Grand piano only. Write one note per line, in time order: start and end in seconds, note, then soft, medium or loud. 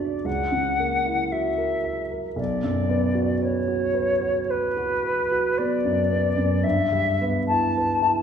0.00 0.20 B1 soft
0.00 0.28 F#2 soft
0.00 0.28 B3 soft
0.00 0.29 D4 soft
0.00 0.29 F#4 soft
0.00 0.29 B4 soft
0.24 2.34 C#2 soft
0.52 0.95 C#3 soft
0.80 1.22 A#3 soft
1.06 1.48 E4 soft
1.32 1.74 F#4 soft
1.58 2.01 A#4 soft
1.84 2.27 E5 soft
2.11 2.38 A#4 soft
2.36 6.59 B1 soft
2.64 3.07 F#2 soft
2.89 3.32 B3 soft
3.15 3.58 F#4 soft
3.42 3.85 B4 soft
3.68 4.12 F#4 soft
3.94 4.38 B4 soft
4.21 4.66 F#4 soft
4.49 4.93 B4 soft
4.77 5.21 F#4 soft
5.04 5.48 B4 soft
5.32 5.74 F#4 soft
5.59 6.01 B3 soft
5.85 6.27 F#2 soft
6.11 6.53 B3 soft
6.37 6.64 F#2 soft
6.65 8.22 G2 soft
6.92 7.38 G3 soft
7.21 7.66 B3 soft
7.50 7.92 E4 soft
7.77 8.19 B4 soft
8.02 8.22 E4 soft